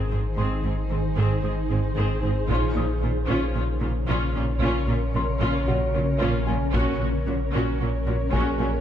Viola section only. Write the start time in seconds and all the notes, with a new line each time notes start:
0.11 C4 G#4
0.37 C4 G#4
0.64 C4 G#4
0.91 C4 G#4
1.17 C4 G#4
1.43 C4 G#4
1.70 C4 G#4
1.97 C4 G#4
2.23 C4 G#4
2.50 C#4 F4
2.76 C#4 F4
3.02 C#4 F4
3.28 C#4 F4
3.56 C#4 F4
3.82 C#4 F4
4.08 C#4 F4
4.35 C#4 F4
4.62 C#4 F4
4.88 C#4 F4
5.15 C#4 F4
5.41 C#4 F4
5.67 C#4 F4
5.94 C#4 F4
6.21 C#4 F4
6.47 C#4 F4
6.73 C#4 F#4
7.00 C#4 F#4
7.27 C#4 F#4
7.53 C#4 F#4
7.80 C#4 F#4
8.06 C#4 F#4
8.33 C#4 F#4
8.60 C#4 F#4